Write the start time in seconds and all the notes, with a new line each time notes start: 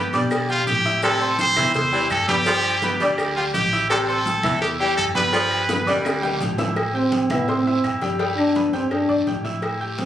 Already playing: B3 G4 B4 B5
0.13 B2 G3 D4 D5 D6, cowbell, low agogo, short guiro, maracas
0.31 cowbell, high conga, low agogo, long guiro, claves, maracas
0.48 F4 G4 G5 G6, high conga, maracas
0.67 A2 G4, cowbell, high conga, low timbale, low agogo, short guiro, maracas
0.85 E4 E5 E6, low agogo, short guiro, maracas
1.02 C3 G3 G4 A4 G5, cowbell, high conga, low agogo, long guiro, claves, maracas
1.21 C4 C5 C6, high conga, maracas
1.39 C5, cowbell, high conga, low agogo, short guiro, maracas
1.56 E2 E3 E4 E5 E6, high conga, low conga, low agogo, short guiro, claves, maracas
1.74 C5, cowbell, high conga, low conga, long guiro, maracas
1.92 E3 G3 G4 G5, high conga, low agogo, maracas
2.10 G2 A4, cowbell, high conga, low agogo, short guiro, claves, maracas
2.28 G3 B3 G4 B4 B5, cowbell, high conga, short guiro, maracas
2.46 F3 G3 G4 G5, cowbell, high conga, low agogo, long guiro, maracas
2.64 high conga, low agogo, claves, maracas
2.82 B3 B4 B5, cowbell, high conga, short guiro, maracas
3.00 D2 G3 D4 D5 D6, cowbell, low agogo, short guiro, maracas
3.18 cowbell, high conga, low agogo, long guiro, claves, maracas
3.36 F4 G4 G5 G6, high conga, maracas
3.54 A1 G4, cowbell, high conga, low timbale, low agogo, short guiro, maracas
3.72 E4 E5 E6, low agogo, short guiro, maracas
3.90 C3 G3 G4 A4 G5, cowbell, high conga, low agogo, long guiro, claves, maracas
4.08 C4 A4 C5 C6, high conga, maracas
4.25 cowbell, high conga, low agogo, short guiro, maracas
4.43 E2 E3 E4 E5 E6, high conga, low conga, low agogo, short guiro, claves, maracas
4.61 G4, cowbell, long guiro, maracas
4.79 E3 G3 G4 G5, high conga, low agogo, maracas
4.97 G2 A4, cowbell, high conga, low agogo, short guiro, claves, maracas
5.15 G3 B3 B4 B5, cowbell, high conga, short guiro, maracas
5.33 F3 G3 G4 G5, cowbell, high conga, low agogo, long guiro, maracas
5.51 high conga, low agogo, claves, maracas
5.68 B3 B4 B5, cowbell, high bongo, high conga, short guiro, maracas
5.86 D2 G3 D4 D5 D6, cowbell, high timbale, low agogo, short guiro, maracas
6.05 cowbell, high bongo, high conga, high timbale, low agogo, long guiro, claves, maracas
6.23 G4 G5 G6, low bongo, high conga, high timbale, maracas
6.40 A1, cowbell, high conga, low timbale, low agogo, short guiro, maracas
6.58 E4 E5 E6, low bongo, high conga, low timbale, low agogo, short guiro, maracas
6.76 cowbell, high conga, low agogo, long guiro, claves
6.94 C4 G4 G5 G6, high conga
7.12 cowbell, high conga, low agogo, short guiro
7.30 A2 B3 E4 E5 E6, high conga, low conga, low agogo, short guiro, claves
7.48 C4 C5 C6, cowbell, high conga, long guiro
7.66 E4 E5 E6, high conga, low agogo
7.83 G2, cowbell, high conga, low agogo, short guiro, claves
8.02 G3 G4 G5, cowbell, high conga, short guiro
8.19 G3 G4 G5, cowbell, high conga, low agogo, long guiro
8.38 D4, high conga, low agogo, claves
8.55 B3 B4 B5, cowbell, high conga, short guiro
8.73 G2 C4 G4 G5 G6, cowbell, low agogo, short guiro
8.91 D4, cowbell, high conga, low agogo, long guiro, claves
9.09 G2 D4 D5 D6, high conga
9.26 A2 G4 G5 G6, cowbell, high conga, low timbale, low agogo, short guiro
9.44 E4 E5 E6, high conga, low agogo, short guiro
9.62 cowbell, high conga, low agogo, long guiro, claves
9.80 G4 G5 G6, high conga
9.98 C4, cowbell, high conga, low agogo, short guiro